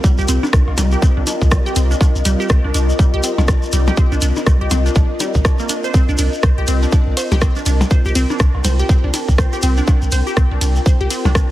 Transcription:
Already playing: ambient pad C4 F4 A#4 D#5
0.04 synth arpeggio sound G3, kick, shekere
0.18 sub bass C2, synth arpeggio sound G4, shekere
0.28 sub bass C2, synth arpeggio sound C4, closed hi-hat, shekere
0.43 synth arpeggio sound D4, percussion blips, shekere
0.53 sub bass C2, synth arpeggio sound D4, kick, cross-stick, shekere
0.68 sub bass C2, cowbell
0.78 sub bass C2, synth arpeggio sound G3, closed hi-hat, percussion blips, shekere
0.91 synth arpeggio sound G4, shekere
1.02 synth arpeggio sound C4, kick, shekere
1.17 sub bass C2, synth arpeggio sound D4
1.27 synth arpeggio sound D4, closed hi-hat, percussion blips, shekere
1.41 sub bass C2, kick, shekere
1.51 synth arpeggio sound G3, kick, cross-stick, shekere
1.66 synth arpeggio sound G4, shekere
1.76 sub bass C2, synth arpeggio sound C4, closed hi-hat, shekere
1.91 synth arpeggio sound D4, shekere
2.01 synth arpeggio sound D4, kick, cowbell, shekere
2.15 sub bass C2, shekere
2.25 sub bass C2, synth arpeggio sound G3, closed hi-hat, shekere
2.40 synth arpeggio sound G4, shekere
2.49 sub bass C2, synth arpeggio sound C4, kick, cross-stick, shekere
2.64 sub bass C2, synth arpeggio sound D4
2.74 sub bass C2, synth arpeggio sound D4, closed hi-hat, shekere
2.90 shekere
2.99 synth arpeggio sound G3, kick, shekere
3.14 sub bass C2, synth arpeggio sound G4
3.23 synth arpeggio sound C4, closed hi-hat, shekere
3.38 sub bass C2, synth arpeggio sound D4, cowbell, percussion blips, shekere
3.48 synth arpeggio sound D4, kick, cross-stick, shekere
3.63 shekere
3.72 sub bass C2, synth arpeggio sound G3, closed hi-hat, shekere
3.87 synth arpeggio sound G4, percussion blips, shekere
3.97 synth arpeggio sound C4, kick, shekere
4.12 sub bass C2, synth arpeggio sound D4, shekere
4.21 sub bass C2, synth arpeggio sound D4, closed hi-hat, shekere
4.36 percussion blips, shekere
4.46 sub bass C2, synth arpeggio sound G3, kick, cross-stick, shekere
4.61 sub bass C2, synth arpeggio sound G4
4.71 sub bass C2, synth arpeggio sound C4, closed hi-hat, cowbell, percussion blips, shekere
4.86 synth arpeggio sound D4, shekere
4.95 sub bass A#1, synth arpeggio sound D4, kick, shekere
5.20 synth arpeggio sound G3, closed hi-hat, percussion blips, shekere
5.34 sub bass A#1, kick, shekere
5.45 synth arpeggio sound D4, kick, cross-stick, shekere
5.59 synth arpeggio sound A#3, shekere
5.69 synth arpeggio sound D4, closed hi-hat, shekere
5.84 synth arpeggio sound C5, shekere
5.94 synth arpeggio sound C4, kick, shekere
6.09 sub bass C2, synth arpeggio sound D4, shekere
6.18 sub bass C2, synth arpeggio sound D4, closed hi-hat, ride, shekere
6.33 shekere
6.43 sub bass C2, synth arpeggio sound C5, kick, cross-stick, shekere
6.58 sub bass C2, synth arpeggio sound G4
6.67 sub bass C2, synth arpeggio sound C4, closed hi-hat, ride, shekere
6.82 synth arpeggio sound D4, shekere
6.92 synth arpeggio sound D4, kick, shekere
7.07 sub bass C2
7.17 synth arpeggio sound C5, closed hi-hat, ride, cowbell, shekere
7.31 sub bass C2, synth arpeggio sound G4, percussion blips, shekere
7.41 synth arpeggio sound C4, kick, cross-stick, shekere
7.50 ambient pad G5
7.56 synth arpeggio sound D4, shekere
7.66 sub bass C2, synth arpeggio sound D4, closed hi-hat, ride, shekere
7.81 percussion blips, shekere
7.91 synth arpeggio sound C5, kick, shekere
8.05 sub bass C2, synth arpeggio sound G4, shekere
8.15 sub bass C2, synth arpeggio sound C4, closed hi-hat, ride, shekere
8.30 synth arpeggio sound D4, percussion blips, shekere
8.39 sub bass C2, synth arpeggio sound D4, kick, cross-stick, shekere
8.55 sub bass C2, cowbell
8.64 sub bass C2, synth arpeggio sound C5, closed hi-hat, ride, percussion blips, shekere
8.79 synth arpeggio sound G4, shekere
8.89 synth arpeggio sound C4, kick, shekere
9.04 sub bass C2, synth arpeggio sound D4
9.14 synth arpeggio sound D4, closed hi-hat, ride, percussion blips, shekere
9.28 sub bass C2, kick, shekere
9.38 synth arpeggio sound C5, kick, cross-stick, shekere
9.53 synth arpeggio sound G4, shekere
9.62 sub bass C2, synth arpeggio sound C4, closed hi-hat, ride, shekere
9.77 synth arpeggio sound D4, shekere
9.87 synth arpeggio sound D4, kick, cowbell, shekere
10.02 sub bass C2, shekere
10.12 sub bass C2, synth arpeggio sound C5, closed hi-hat, ride, shekere
10.27 synth arpeggio sound G4, shekere
10.37 sub bass C2, synth arpeggio sound C4, kick, cross-stick, shekere
10.51 sub bass C2, synth arpeggio sound D4
10.61 sub bass C2, synth arpeggio sound D4, closed hi-hat, ride, shekere
10.76 shekere
10.86 synth arpeggio sound C5, kick, shekere
11.01 sub bass C2, synth arpeggio sound G4
11.10 synth arpeggio sound C4, closed hi-hat, ride, shekere
11.25 sub bass C2, synth arpeggio sound D4, cowbell, percussion blips, shekere
11.35 synth arpeggio sound D4, kick, cross-stick, shekere

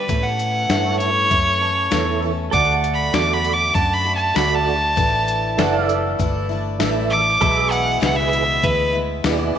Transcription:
Already playing: fiddle B4
0.08 steel-string acoustic guitar A2 E3 A3 C#4 A4, fingered electric bass A2, kick, closed hi-hat
0.24 fiddle F#5
0.39 closed hi-hat
0.69 fingered electric bass G2, steel-string acoustic guitar A2 E3 A3 C#4 A4, tonewheel organ E4 A4 C#5, snare, closed hi-hat
1.00 fiddle C#5, closed hi-hat
1.30 fingered electric bass F#2, steel-string acoustic guitar E3 A3 C#4 A4, kick, closed hi-hat
1.61 steel-string acoustic guitar A3 C#4 A4
1.91 fingered electric bass E2, steel-string acoustic guitar A2 E3 A3 C#4 A4, tonewheel organ E4 A4 C#5, snare, closed hi-hat
2.22 steel-string acoustic guitar A3 C#4 A4
2.51 fingered electric bass D2, steel-string acoustic guitar D3 A3 D4 F#4, pedal steel guitar A4 D5 F#5, fiddle D6, kick, closed hi-hat
2.84 closed hi-hat
2.94 fiddle B5
3.13 fingered electric bass E2, steel-string acoustic guitar D3 A3 D4 F#4, tonewheel organ F#4 A4 D5, fiddle D6, snare, closed hi-hat
3.34 fiddle B5
3.44 closed hi-hat
3.53 fiddle D6
3.74 fingered electric bass F#2, steel-string acoustic guitar D3 A3 D4 F#4, fiddle A5, kick, closed hi-hat
3.94 fiddle B5
4.05 steel-string acoustic guitar A3 D4 F#4
4.15 fiddle A5
4.34 fingered electric bass D2, steel-string acoustic guitar D3 A3 D4 F#4, tonewheel organ F#4 A4 D5, fiddle B5, snare, closed hi-hat
4.55 fiddle A5
4.66 steel-string acoustic guitar A3 D4 F#4
4.96 fingered electric bass A1, steel-string acoustic guitar A2 E3 A3 D4 E4, kick, closed hi-hat
5.28 closed hi-hat
5.57 fingered electric bass F#1, steel-string acoustic guitar A2 E3 A3 D4 E4, tonewheel organ E4 A4 D5, pedal steel guitar A4 D5, snare, closed hi-hat
5.61 pedal steel guitar F#5
5.86 pedal steel guitar E5, closed hi-hat
6.19 fingered electric bass G1, steel-string acoustic guitar E3 A3 D4 E4, kick, closed hi-hat
6.49 steel-string acoustic guitar A3 D4 E4
6.79 fingered electric bass A1, steel-string acoustic guitar A2 E3 A3 D4 E4, tonewheel organ E4 A4 E5, snare, closed hi-hat
7.10 steel-string acoustic guitar A3 D4 E4, fiddle D6
7.40 fingered electric bass B1, steel-string acoustic guitar E2 B2 E3 G#3 B3 E4, pedal steel guitar A4 B4 E5, kick, closed hi-hat
7.61 pedal steel guitar G#4
7.71 fiddle F#5, closed hi-hat
8.00 fingered electric bass C#2, steel-string acoustic guitar E2 B2 E3 G#3 B3 E4, tonewheel organ E4 G#4, fiddle F#5, snare, closed hi-hat
8.04 tonewheel organ B4
8.16 fiddle E5
8.33 closed hi-hat
8.62 fingered electric bass D2, steel-string acoustic guitar E3 G#3 B3 E4, fiddle B4, kick, closed hi-hat
8.93 steel-string acoustic guitar E3 G#3 B3 E4
9.24 fingered electric bass D#2, steel-string acoustic guitar B2 G#3 B3 E4, tonewheel organ E4 G#4 D5, snare, closed hi-hat
9.55 steel-string acoustic guitar E4, muted fingered electric bass stroke

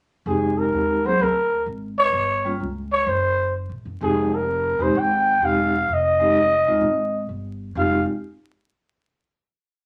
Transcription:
0.26 upright bass F1, vibraphone G#3 C4 D#4 G4, trumpet G#4
0.58 trumpet A#4
0.72 upright bass D#2
1.04 vibraphone F#3 A#3 C4 G#4, trumpet C5
1.19 upright bass D2, trumpet A#4
1.66 upright bass G#1
1.98 trumpet C#5
2.12 upright bass G1
2.45 vibraphone G3 A#3 C#4 F4
2.60 upright bass C#2
2.92 trumpet C#5
3.07 upright bass F#1, trumpet C5
3.69 upright bass A#1
3.85 upright bass F#1
4.01 upright bass F1, vibraphone G#3 C4 D#4 G4, trumpet G#4
4.35 trumpet A#4
4.78 upright bass E1, vibraphone G#3 C4 D#4 G4
4.82 trumpet C5
4.95 upright bass G#1
4.99 trumpet G5
5.41 upright bass E1, vibraphone G#3 C4 D#4 G4
5.45 trumpet F5
5.89 upright bass F1
5.93 trumpet D#5
6.20 vibraphone G#3 C4 D#4 G4
6.66 upright bass D#2, vibraphone G#3 C4 D#4 F4
6.81 upright bass G#1
7.29 upright bass G1
7.75 upright bass F1, vibraphone G#3 C4 D#4 F4 G4, trumpet F5

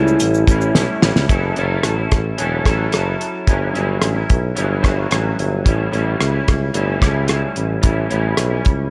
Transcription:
Already playing: tuba C#2, clean electric guitar A2 G3 C#4 E4, synth keys G3 C#4 E4 A4
0.08 shaker
0.20 tuba A1, closed hi-hat, shaker
0.34 shaker
0.47 tuba A1, clean electric guitar A2 G3 C#4 E4, kick, closed hi-hat, shaker
0.61 shaker
0.74 tuba B1, clean electric guitar A2 G3 C#4 E4, snare, tambourine
1.01 tuba A1, clean electric guitar A2 G3 C#4, snare
1.05 clean electric guitar E4
1.16 tuba C#2, snare
1.28 tuba F#1, clean electric guitar F#3 C#4 E4 A4, kick, closed hi-hat
1.56 tuba F#1, clean electric guitar F#3 C#4 E4 A4, closed hi-hat
1.83 tuba A1, cross-stick, closed hi-hat
1.96 clean electric guitar C#4 E4 A4
2.11 tuba A1, kick, cross-stick, closed hi-hat
2.38 tuba E1, clean electric guitar F#3 C#4 E4 A4, closed hi-hat
2.65 tuba A1, clean electric guitar F#3 C#4 E4 A4, kick, cross-stick, closed hi-hat
2.92 tuba F#1, clean electric guitar F#3 C#4 E4 A4, cross-stick, closed hi-hat
3.21 closed hi-hat
3.46 tuba G1, clean electric guitar G2 F#3 C#4 E4, kick, closed hi-hat
3.73 tuba G1, clean electric guitar G2 F#3 C#4 E4, closed hi-hat
4.01 tuba A1, cross-stick, closed hi-hat
4.14 clean electric guitar F#3 C#4 E4
4.29 tuba B1, kick, closed hi-hat
4.55 tuba G1, clean electric guitar G2 F#3 C#4 E4, closed hi-hat
4.81 tuba G1, clean electric guitar G2 F#3 C#4 E4, kick, cross-stick, closed hi-hat
5.09 tuba A1, clean electric guitar G2 F#3 C#4 E4, cross-stick, closed hi-hat
5.38 tuba G1, closed hi-hat
5.65 tuba A1, clean electric guitar A2 G3 C#4 E4, kick, closed hi-hat
5.91 tuba A1, clean electric guitar A2 G3 C#4 E4, closed hi-hat
6.20 tuba C#2, cross-stick, closed hi-hat
6.31 clean electric guitar G3 C#4 E4
6.48 tuba C#2, kick, cross-stick, closed hi-hat
6.73 tuba G1, clean electric guitar A2 G3 C#4 E4, closed hi-hat
7.00 tuba C#2, clean electric guitar A2 G3 C#4 E4, kick, cross-stick, closed hi-hat
7.27 clean electric guitar A2 G3 C#4 E4, cross-stick, closed hi-hat
7.56 tuba A1, closed hi-hat
7.82 tuba A1, clean electric guitar A2 G3 C#4 E4, kick, closed hi-hat
8.09 tuba A1, clean electric guitar A2 G3 C#4 E4, closed hi-hat
8.37 tuba B1, cross-stick, closed hi-hat
8.50 clean electric guitar G3 C#4 E4
8.65 tuba C#2, kick, closed hi-hat

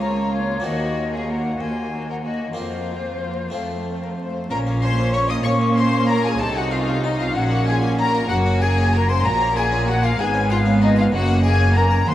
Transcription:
Already playing: harpsichord C#2 A#3 C#4 F4, cello section C#2
0.00 viola section A#3, violin section F4 C#5, flute A#5
0.31 viola section A#3, violin section F4, flute C#5
0.60 harpsichord A#3 C4 F#4, violin section F#4
0.64 harpsichord D#2, cello section D#2, viola section A#3, violin section F#4, flute D#5
0.97 viola section A#3, violin section F#4
1.12 violin section G#4, flute F5
1.28 viola section A#3, violin section F#4 A#4, flute F#5
1.60 cello section D#2, harpsichord D#2, viola section A#3, violin section F#4 C5, flute G#5
1.92 viola section A#3, violin section F#4
2.09 violin section A#4, flute F#5
2.25 viola section A#3, violin section F#4, flute D#5
2.53 cello section F2, harpsichord A#3 C4 F4, violin section F4
2.58 harpsichord F2, viola section A#3, violin section F4, flute C5
2.90 viola section A#3, violin section F4
3.22 viola section A#3, violin section F4
3.50 cello section F2, harpsichord A3 C4 F4
3.55 harpsichord F2, viola section A3, violin section A4
3.87 viola section A3
4.03 violin section A#4
4.18 viola section A3, violin section C5
4.50 double bass section A#1, cello section A#2, harpsichord A#2, viola section C#4, violin section A#4 A#5, flute A#5
4.67 harpsichord A#3
4.82 harpsichord F4, violin section C5 C6, flute C6
4.98 harpsichord A#3
5.13 harpsichord C#4, violin section C#5 C#6, flute C#6
5.30 harpsichord F4, violin section D#5 D#6, flute D#6
5.44 double bass section A#2, cello section A#3, harpsichord A#3 C#4, viola section C#4, violin section C#5 C#6, flute C#6
5.61 harpsichord A#3
5.76 harpsichord F4, violin section C5 C6, flute C6
5.93 harpsichord A#3
6.08 harpsichord C#4, violin section A#4 A#5, flute A#5
6.25 harpsichord F4, violin section G#4 G#5, flute G#5
6.39 double bass section C2, cello section C3, harpsichord C3, viola section D#4, violin section A4 A5, flute A5
6.56 harpsichord A3, violin section F#4 F#5, flute F#5
6.71 harpsichord F4, violin section F4 F5, flute F5
6.88 harpsichord A3
7.03 harpsichord D#4, violin section D#4 D#5, flute D#5
7.19 harpsichord F4, violin section F4 F5, flute F5
7.35 double bass section A#1, harpsichord A#2, cello section A#2, viola section C#4, violin section F#4 F#5, flute F#5
7.51 harpsichord A#3
7.67 harpsichord F4, violin section G#4 G#5, flute G#5
7.82 harpsichord A#3
7.98 harpsichord C#4, violin section A#4 A#5, flute A#5
8.15 harpsichord F4
8.29 double bass section F#1, harpsichord F#2, cello section F#2, viola section A#3, violin section F#4 F#5, flute F#5
8.46 harpsichord C#4
8.60 violin section G#4 G#5, harpsichord A#4, flute G#5
8.78 harpsichord C#4
8.93 harpsichord F#4, violin section A#4 A#5, flute A#5
9.08 harpsichord A#4, violin section C5 C6, flute C6
9.24 double bass section A#1, cello section A#2, harpsichord A#2 F#4, viola section A#3, violin section A#4 A#5, flute A#5
9.41 harpsichord C#4
9.56 violin section G#4 G#5, harpsichord A#4, flute G#5
9.72 harpsichord C#4
9.87 violin section F#4 F#5, harpsichord F#4, flute F#5
10.02 violin section F4 F5, harpsichord A#4, flute F5
10.19 double bass section G#1, cello section G#2, harpsichord G#2 G#3, viola section B3, violin section G#4 G#5, flute G#5
10.34 harpsichord C#4
10.50 violin section F4 F5, harpsichord B4, flute F5
10.66 harpsichord C#4
10.81 violin section D#4 D#5, harpsichord F4, flute D#5
10.96 violin section F4 F5, harpsichord B4, flute F5
11.12 double bass section F#1, harpsichord F#2, cello section F#2, viola section A#3, violin section F#4 F#5, flute F#5
11.28 harpsichord C#4
11.44 violin section G#4 G#5, harpsichord A#4, flute G#5
11.59 harpsichord C#4
11.75 harpsichord F#4, violin section A#4 A#5, flute A#5
11.91 harpsichord A#4
12.07 harpsichord D#2, cello section D#2, double bass section D#2, viola section F#3, violin section C5 C6, flute C6

